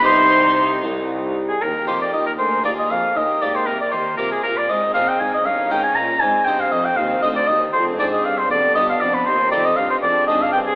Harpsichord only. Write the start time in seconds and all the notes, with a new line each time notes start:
0.01 C4 D#4 G4
0.05 C3
0.84 C2
1.62 D#2
1.87 F2 A#3 D#4 G4
2.13 D#2
2.39 D2
2.64 D#2 A#3 F4 G#4
2.90 F2
3.15 D#2
3.42 G#2 A#3 G4
3.67 C3
3.92 D#3
4.18 C3 A#3 G4
4.44 A#2
4.69 G#2 G#3
4.94 A#2 C4 D#4 G#4
5.20 G#2
5.46 G2
5.71 G#2 C#4 D#4 A#4
5.96 A#2
6.21 G#2 G#3
6.47 G2 C4 D#4 C5
6.72 F2
6.98 D#2
7.23 D2 C4 D#4 C5
7.49 D#2
7.74 F2
7.99 G#2 C4 D4 G#4
8.25 G2
8.51 F2
8.76 G2 B3 D4 G4
9.02 F2
9.27 D#2
9.52 F2 C4 D#4 G4
9.78 G2
10.04 F2
10.29 G#2 C4 D4 G#4
10.55 G2